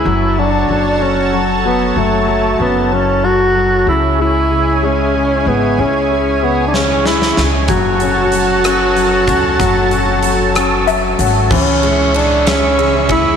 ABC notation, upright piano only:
X:1
M:6/8
L:1/8
Q:3/8=63
K:F#m
V:1 name="Upright piano" clef=bass
F, F, F, F, F, F, | F, F, F, F, F, F, | C, G, C, G, C, G, | C, G, C, G, C, G, |
F, C F, C F, C | F, C F, C [F,e] [Cf] | E, G,2 G, C, G, |]